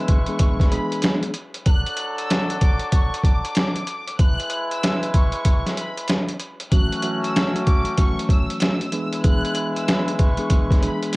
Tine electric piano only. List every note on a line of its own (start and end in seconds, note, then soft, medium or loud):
0.00 0.16 E3 medium
0.00 0.17 G#3 medium
0.00 0.17 B3 medium
0.00 0.17 D4 medium
0.00 0.17 G#4 loud
0.27 0.68 E3 medium
0.27 0.68 G#3 medium
0.27 0.69 B3 medium
0.27 0.69 D4 medium
0.27 0.69 G#4 loud
0.70 1.30 E3 medium
0.70 1.31 G#3 medium
0.70 1.31 B3 medium
0.70 1.31 D4 medium
0.70 1.31 G#4 loud
6.72 7.01 E3 medium
6.72 7.02 F#3 medium
6.72 7.02 A3 medium
6.72 7.02 C#4 medium
6.72 7.02 F#4 loud
7.02 7.92 E3 loud
7.02 7.92 F#3 loud
7.02 7.92 A3 medium
7.02 7.93 C#4 medium
7.02 7.93 F#4 loud
7.97 8.90 E3 medium
7.97 8.92 F#3 medium
7.97 8.93 A3 medium
7.97 8.93 C#4 medium
7.97 8.93 F#4 loud
8.91 9.22 E3 loud
8.91 9.22 G#3 medium
8.91 9.22 B3 medium
8.91 9.22 D4 medium
8.91 9.23 G#4 loud
9.23 10.27 E3 medium
9.23 10.27 G#3 medium
9.23 10.27 B3 medium
9.23 10.28 D4 medium
9.23 10.28 G#4 loud
10.37 10.79 E3 medium
10.37 10.79 G#3 medium
10.37 10.79 B3 medium
10.37 10.79 D4 medium
10.37 10.80 G#4 loud
10.81 11.16 E3 medium
10.81 11.16 G#3 medium
10.81 11.16 B3 medium
10.81 11.16 D4 medium
10.81 11.16 G#4 loud